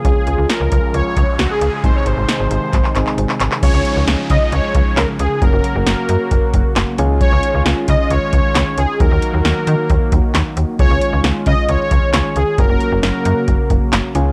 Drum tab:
CC |----------------|----------------|x---------------|----------------|
HH |x-x-x-x-x-x-x-x-|x-x-x-x-x-x-x-x-|x-x-x-x-x-x-x-x-|x-x-x-x-x-x-x-x-|
CP |----------------|--------xxxx-xxx|------------x---|------------x---|
SD |----o-------o---|----o-----------|----o-------o---|----o-------o---|
BD |o-----o---o-----|o-------o-------|o-----o---o-----|o-------o-o-----|

CC |----------------|----------------|----------------|----------------|
HH |x-x-x-x-x-x-x-x-|x-x-x-x-x-x-x-x-|x-x-x-x-x-x-x-x-|x-x-x-x-x-x-x-x-|
CP |------------x---|------------x---|------------x---|------------x---|
SD |----o-------o---|----o-------o---|----o-------o---|----o-------o---|
BD |o-----o---o-----|o-------o-o-----|o-----o---o-----|o-------o-o-----|